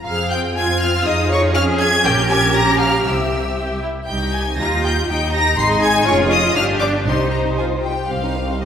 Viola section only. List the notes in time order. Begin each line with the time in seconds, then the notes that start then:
0.07 C4 G#4
0.57 C4 F4
1.06 D#4 G#4
1.55 C#4
2.05 C#4 A#4
2.56 G4
3.07 C4 G4
3.57 G4
3.82 E4
4.08 D#4 G4
4.58 D#4 G4
5.08 D#4
5.57 D#4 G#4
6.07 C#4 G#4
6.57 D4 G4
7.06 D#4 G4
7.59 F4
7.86 G4